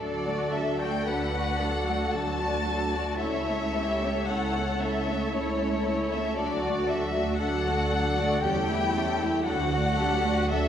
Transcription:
0.00 0.96 D2 soft
0.00 0.26 F#3 soft
0.00 0.27 D4 soft
0.00 0.25 A4 soft
0.00 1.04 A4 soft
0.00 0.51 D5 medium
0.27 0.55 A3 soft
0.27 0.55 F#4 soft
0.27 0.55 D5 soft
0.53 0.82 F#3 soft
0.53 0.82 D4 soft
0.53 0.82 A4 soft
0.53 0.81 E5 soft
0.80 1.08 A3 soft
0.80 1.08 F#4 soft
0.80 1.08 D5 soft
0.80 1.07 G5 medium
1.06 2.02 D2 soft
1.06 1.33 F#3 soft
1.06 1.33 D4 soft
1.06 1.33 A4 soft
1.06 1.61 B4 soft
1.06 2.14 F#5 medium
1.34 1.61 A3 soft
1.34 1.61 F#4 soft
1.34 1.62 D5 soft
1.59 1.88 F#3 soft
1.59 1.88 D4 soft
1.59 1.87 A4 soft
1.59 2.14 A4 soft
1.86 2.15 A3 soft
1.86 2.14 F#4 soft
1.86 2.15 F#4 soft
1.86 2.14 D5 soft
2.11 3.09 D2 soft
2.11 2.39 F#3 soft
2.11 2.39 D4 soft
2.11 3.22 F#4 soft
2.11 2.38 A4 soft
2.11 3.21 A5 medium
2.40 2.68 A3 soft
2.40 2.67 F#4 soft
2.40 2.68 F#4 soft
2.40 2.68 D5 soft
2.66 2.95 F#3 soft
2.66 2.94 D4 soft
2.66 2.94 A4 soft
2.93 3.22 A3 soft
2.93 3.21 F#4 soft
2.93 3.22 F#4 soft
2.93 3.21 D5 soft
3.19 4.16 C#2 soft
3.19 3.47 C#4 soft
3.19 3.46 E4 soft
3.19 3.76 E4 soft
3.19 3.46 A4 soft
3.19 3.46 C#5 soft
3.19 4.26 E5 medium
3.47 3.76 A3 soft
3.47 3.74 C#4 soft
3.47 3.73 A4 soft
3.47 3.73 C#5 soft
3.74 4.01 C#4 soft
3.74 4.02 E4 soft
3.74 4.28 G4 soft
3.74 4.02 A4 soft
3.74 4.02 C#5 soft
4.02 4.29 A3 soft
4.02 4.28 C#4 soft
4.02 4.28 A4 soft
4.02 4.27 C#5 soft
4.27 5.21 C#2 soft
4.27 4.54 C#4 soft
4.27 4.54 E4 soft
4.27 4.52 A4 soft
4.27 5.34 A4 soft
4.27 4.52 C#5 soft
4.27 4.80 F#5 medium
4.53 4.82 A3 soft
4.53 4.79 C#4 soft
4.53 4.79 A4 soft
4.53 4.78 C#5 soft
4.80 5.07 C#4 soft
4.80 5.07 E4 soft
4.80 5.06 A4 soft
4.80 5.06 C#5 soft
4.80 5.34 E5 medium
5.07 5.35 A3 soft
5.07 5.34 C#4 soft
5.07 5.32 A4 soft
5.07 5.32 C#5 soft
5.33 6.26 C#2 soft
5.33 5.59 C#4 soft
5.33 6.36 E4 soft
5.33 5.59 E4 soft
5.33 5.57 A4 soft
5.33 6.12 C#5 medium
5.33 5.58 C#5 soft
5.59 5.87 A3 soft
5.59 5.86 C#4 soft
5.59 5.84 A4 soft
5.59 5.84 C#5 soft
5.85 6.13 C#4 soft
5.85 6.13 E4 soft
5.85 6.09 A4 soft
5.85 6.10 C#5 soft
6.10 6.39 A3 soft
6.10 6.34 A4 soft
6.10 6.37 C#5 soft
6.10 6.38 E5 medium
6.14 6.39 C#4 soft
6.35 6.61 A4 soft
6.35 6.88 D5 medium
6.39 7.29 D2 soft
6.39 6.63 F#3 soft
6.39 6.63 D4 soft
6.39 7.41 F#4 soft
6.61 6.88 F#4 soft
6.61 6.87 D5 soft
6.66 6.90 A3 soft
6.66 6.90 F#4 soft
6.87 7.15 D4 soft
6.87 7.13 A4 soft
6.87 7.40 E5 medium
6.91 7.15 F#3 soft
7.14 7.41 A3 soft
7.14 7.39 F#4 soft
7.14 7.41 F#4 soft
7.14 7.40 D5 soft
7.40 8.31 D2 soft
7.40 7.65 F#3 soft
7.40 7.65 D4 soft
7.40 8.42 A4 soft
7.40 7.64 A4 soft
7.40 8.40 F#5 medium
7.65 7.92 A3 soft
7.65 7.91 F#4 soft
7.65 7.92 F#4 soft
7.65 7.91 D5 soft
7.91 8.18 F#3 soft
7.91 8.18 D4 soft
7.91 8.17 A4 soft
8.18 8.43 A3 soft
8.18 8.43 F#4 soft
8.18 8.43 D5 soft
8.43 9.33 E2 medium
8.43 8.67 G3 soft
8.43 8.67 C#4 soft
8.43 8.94 G4 soft
8.43 8.66 G4 soft
8.43 8.67 A4 soft
8.43 9.46 G5 medium
8.69 8.94 A3 soft
8.69 8.94 E4 soft
8.69 8.95 E4 soft
8.69 8.94 G4 soft
8.94 9.20 G3 soft
8.94 9.20 C#4 soft
8.94 9.45 E4 soft
8.94 9.21 G4 soft
8.94 9.21 A4 soft
9.21 9.46 A3 soft
9.21 9.46 E4 soft
9.21 9.46 G4 soft
9.45 10.38 D2 medium
9.45 9.70 F#3 soft
9.45 9.70 D4 soft
9.45 9.96 F#4 soft
9.45 9.70 A4 soft
9.45 10.49 F#5 medium
9.73 9.99 A3 soft
9.73 9.98 F#4 soft
9.73 9.99 F#4 soft
9.73 9.99 D5 soft
9.98 10.24 F#3 soft
9.98 10.25 D4 soft
9.98 10.49 G4 soft
9.98 10.24 A4 soft
10.25 10.51 A3 soft
10.25 10.51 F#4 soft
10.25 10.51 D5 soft
10.50 10.68 D2 medium
10.50 10.68 F#3 soft
10.50 10.68 D4 soft
10.50 10.68 A4 medium
10.50 10.68 A4 soft
10.50 10.68 E5 medium

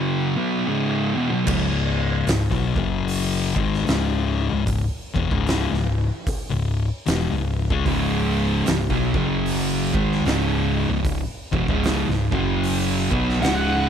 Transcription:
0.00 0.35 F#2 loud
0.00 0.35 C#3 loud
0.00 0.35 F#3 loud
0.36 0.66 B2 medium
0.36 0.67 F#3 medium
0.36 0.67 B3 loud
0.66 1.14 C#2 medium
0.66 1.14 G#2 medium
0.66 1.15 C#3 medium
1.14 1.30 E2 loud
1.14 1.29 B2 loud
1.30 1.44 B2 loud
1.30 1.45 F#3 loud
1.45 2.24 C#1 loud
1.45 2.24 C#2 medium
1.45 2.25 G#2 medium
1.45 2.26 C#3 medium
1.45 kick loud
1.45 crash loud
2.25 2.50 C#1 medium
2.25 2.49 C#2 medium
2.25 2.50 G#2 medium
2.25 open hi-hat medium
2.29 snare loud
2.49 2.75 B1 medium
2.49 2.74 B2 medium
2.49 2.74 F#3 loud
2.49 kick loud
2.75 3.52 F#1 medium
2.75 3.54 F#2 loud
2.75 3.54 C#3 loud
2.75 3.55 F#3 loud
2.75 kick loud
3.08 open hi-hat medium
3.55 3.85 G#1 loud
3.55 3.85 G#2 medium
3.55 3.86 D#3 medium
3.55 3.87 G#3 medium
3.55 kick loud
3.74 snare soft
3.85 4.48 C#1 medium
3.85 4.49 C#2 medium
3.85 4.50 G#2 medium
3.85 4.51 C#3 medium
3.85 snare loud
3.85 open hi-hat medium
4.50 4.89 C#1 medium
4.50 4.81 C#2 medium
4.50 4.82 G#2 medium
4.67 kick loud
4.67 open hi-hat medium
5.14 5.30 E1 loud
5.14 5.30 E2 medium
5.14 5.30 B2 loud
5.14 kick loud
5.31 5.69 C#1 medium
5.31 5.70 C#2 medium
5.31 5.70 G#2 medium
5.31 5.70 C#3 loud
5.31 kick loud
5.47 snare loud
5.47 open hi-hat medium
5.71 6.08 C#1 medium
5.71 6.05 C#2 medium
5.71 6.05 G#2 medium
5.71 snare soft
6.27 kick loud
6.27 open hi-hat medium
6.50 6.88 C#1 medium
6.50 6.84 C#2 medium
6.50 6.85 G#2 medium
7.06 7.29 E1 medium
7.06 7.29 E2 medium
7.06 7.29 B2 loud
7.06 snare loud
7.06 open hi-hat medium
7.31 7.68 C#1 medium
7.31 7.65 C#2 medium
7.31 7.65 G#2 medium
7.70 7.85 C#2 loud
7.70 7.85 C#3 medium
7.70 7.86 G#3 loud
7.70 kick loud
7.86 8.62 C#1 loud
7.86 8.65 C#2 medium
7.86 8.65 G#2 medium
7.86 8.65 C#3 medium
7.86 kick loud
7.86 open hi-hat medium
8.66 8.89 C#1 medium
8.66 8.90 C#2 medium
8.66 8.90 G#2 medium
8.66 snare loud
8.66 open hi-hat medium
8.90 9.13 B1 medium
8.90 9.13 B2 medium
8.90 9.13 F#3 loud
8.90 kick loud
9.14 9.90 F#1 loud
9.14 9.92 F#2 loud
9.14 9.92 C#3 loud
9.14 9.93 F#3 loud
9.14 kick loud
9.46 open hi-hat medium
9.94 10.23 G#1 loud
9.94 10.24 G#2 medium
9.94 10.24 D#3 medium
9.94 10.24 G#3 medium
9.94 kick loud
10.12 snare soft
10.24 10.85 C#1 medium
10.24 10.89 C#2 medium
10.24 10.89 G#2 loud
10.24 10.89 C#3 loud
10.24 snare loud
10.24 open hi-hat medium
10.89 11.26 C#1 medium
10.89 11.19 C#2 medium
10.89 11.20 G#2 medium
11.05 kick loud
11.05 open hi-hat medium
11.52 11.67 E1 loud
11.52 11.67 E2 medium
11.52 11.68 B2 loud
11.52 kick loud
11.68 12.05 C#1 loud
11.68 12.07 C#2 medium
11.68 12.07 G#2 loud
11.68 12.08 C#3 loud
11.68 kick loud
11.83 snare loud
11.83 open hi-hat medium
12.08 12.30 C#1 medium
12.08 12.32 C#2 medium
12.08 12.33 G#2 medium
12.08 snare soft
12.32 13.08 F#1 medium
12.32 13.10 F#2 loud
12.32 13.11 C#3 loud
12.32 13.11 F#3 loud
12.32 kick loud
12.63 open hi-hat medium
13.11 13.40 B1 loud
13.11 13.41 B2 medium
13.11 13.42 F#3 medium
13.11 13.42 B3 medium
13.11 kick medium
13.29 snare soft
13.42 13.87 C#1 medium
13.42 13.89 C#2 medium
13.42 13.89 G#2 medium
13.42 13.89 C#3 medium
13.42 13.89 F#5 medium
13.42 snare loud
13.42 open hi-hat medium

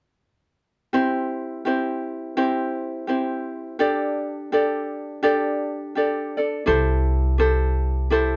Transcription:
0.93 1.65 C4 medium
0.93 1.65 E4 medium
0.93 1.65 G4 medium
0.93 1.66 C5 medium
1.65 2.36 C4 medium
1.65 2.36 E4 medium
1.65 2.36 G4 medium
1.65 2.37 C5 medium
2.37 3.07 C4 medium
2.37 3.08 E4 medium
2.37 3.07 G4 medium
2.37 3.08 C5 medium
3.07 3.79 C4 soft
3.07 3.79 E4 medium
3.07 3.79 G4 soft
3.07 3.80 C5 medium
3.79 4.51 D4 medium
3.79 4.52 G4 medium
3.79 4.53 A4 medium
3.79 4.52 D5 medium
4.52 5.22 D4 medium
4.52 5.22 G4 medium
4.52 5.23 A4 medium
4.52 5.22 D5 medium
5.23 5.95 D4 medium
5.23 5.95 G4 medium
5.23 5.97 A4 medium
5.23 5.96 D5 medium
5.95 6.38 D4 soft
5.95 6.38 G4 soft
5.95 6.37 A4 soft
5.95 6.36 D5 medium
6.37 6.65 D4 soft
6.37 6.66 A4 soft
6.37 6.67 D5 soft
6.66 8.36 C2 medium
6.66 7.38 E4 medium
6.66 7.38 G4 medium
6.66 7.38 A4 medium
6.66 7.38 C5 medium
7.38 8.10 E4 medium
7.38 8.10 G4 medium
7.38 8.10 A4 medium
7.38 8.11 C5 medium
8.10 8.36 E4 medium
8.10 8.36 G4 medium
8.10 8.36 A4 medium
8.10 8.36 C5 medium

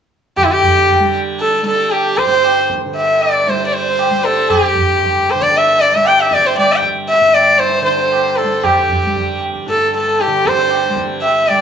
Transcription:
0.37 2.85 D3 medium
0.37 0.46 G4 medium
0.37 tabla na medium
0.37 tabla ge medium
0.44 0.53 E4 medium
0.44 0.59 G4 medium
0.51 1.15 G4 medium
0.61 1.22 G4 medium
0.61 tabla ge medium
0.89 tabla tin medium
0.89 tabla ge medium
1.00 1.63 G3 medium
1.15 tabla na soft
1.40 1.65 A4 medium
1.40 tabla te medium
1.63 3.47 G3 medium
1.63 1.93 A4 medium
1.63 tabla te medium
1.82 2.07 A4 soft
1.91 2.19 G4 medium
1.91 tabla na medium
2.06 2.33 G4 medium
2.18 2.70 C5 medium
2.18 tabla ke medium
2.26 4.72 G2 soft
2.31 2.80 C5 medium
2.44 tabla na medium
2.70 tabla ke medium
2.86 5.34 D3 medium
2.96 3.24 E5 medium
2.96 tabla tin medium
3.10 3.63 E5 medium
3.21 3.51 D5 medium
3.21 tabla na medium
3.47 4.11 G3 medium
3.47 3.66 C5 medium
3.47 tabla te medium
3.64 3.82 C5 soft
3.64 3.75 D5 medium
3.73 4.27 C5 medium
3.73 tabla te soft
3.82 3.88 D5 soft
3.88 4.67 C5 medium
3.99 tabla na medium
4.11 5.96 G3 medium
4.24 4.52 A4 medium
4.24 tabla te medium
4.50 5.32 G4 medium
4.50 tabla na medium
4.50 tabla ge medium
4.65 5.58 G4 medium
4.73 7.20 G2 medium
4.73 tabla ge medium
5.03 tabla tin medium
5.03 tabla ge medium
5.28 5.43 C5 medium
5.28 tabla na soft
5.35 7.81 D3 medium
5.41 5.59 D5 medium
5.41 tabla ke soft
5.53 5.67 D5 medium
5.53 tabla te medium
5.57 5.82 E5 medium
5.66 6.13 E5 medium
5.80 5.96 D5 medium
5.80 tabla te medium
5.95 6.58 G3 medium
5.95 6.08 E5 medium
6.05 6.22 G5 medium
6.05 tabla na medium
6.12 6.19 A5 soft
6.16 6.71 G5 medium
6.21 6.35 E5 medium
6.31 6.48 D5 medium
6.31 tabla ke medium
6.47 6.57 C5 medium
6.57 8.44 G3 medium
6.57 6.74 D5 medium
6.57 tabla na medium
6.69 6.94 D5 medium
6.69 6.84 G5 medium
6.82 tabla ke soft
7.09 7.36 E5 medium
7.09 tabla tin medium
7.20 9.67 G2 medium
7.20 7.75 E5 medium
7.34 7.60 D5 medium
7.34 tabla na soft
7.59 7.84 C5 medium
7.59 tabla te medium
7.73 7.98 C5 soft
7.81 10.27 D3 soft
7.81 8.39 C5 medium
7.87 tabla te medium
8.00 8.79 C5 medium
8.12 tabla na medium
8.38 8.65 A4 medium
8.38 tabla te medium
8.44 9.06 G3 soft
8.64 9.41 G4 medium
8.64 tabla na medium
8.64 tabla ge medium
8.76 9.50 G4 soft
8.90 tabla ge medium
9.06 10.89 G3 medium
9.15 tabla tin medium
9.15 tabla ge medium
9.41 tabla na medium
9.54 tabla ke soft
9.67 11.61 G2 medium
9.67 9.92 A4 medium
9.67 tabla te medium
9.80 10.06 A4 soft
9.92 10.22 A4 medium
9.92 tabla te medium
10.07 10.33 A4 medium
10.19 10.49 G4 medium
10.19 tabla te medium
10.27 11.61 D3 medium
10.32 10.58 G4 soft
10.32 tabla te soft
10.46 10.97 C5 medium
10.46 tabla ke medium
10.57 11.05 C5 medium
10.57 tabla te medium
10.71 tabla na medium
10.89 11.49 G3 medium
10.96 tabla ke medium
11.22 11.49 E5 medium
11.22 tabla tin medium
11.34 11.61 E5 medium
11.48 11.61 G3 medium
11.48 11.61 D5 medium
11.48 tabla na medium

